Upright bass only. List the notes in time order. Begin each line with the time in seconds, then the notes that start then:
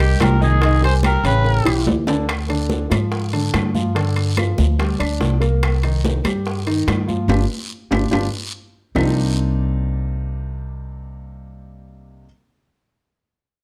Already playing: C2
0.20 C2
1.24 A1
1.65 B1
1.86 D2
2.91 G#2
3.54 G2
4.58 D2
5.00 D2
5.20 C2
6.24 G2
6.87 G2
7.28 G1
7.91 G1
8.12 G1
8.95 C2